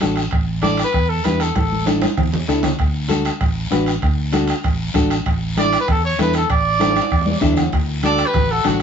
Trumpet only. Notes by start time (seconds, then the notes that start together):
0.62 D5
0.84 B4
1.09 A4
1.25 B4
1.41 A4
1.57 A4
5.58 D5
5.80 B4
5.90 A4
6.05 C#5
6.21 B4
6.36 A4
6.50 D5
8.05 D5
8.26 B4
8.51 A4
8.67 F#4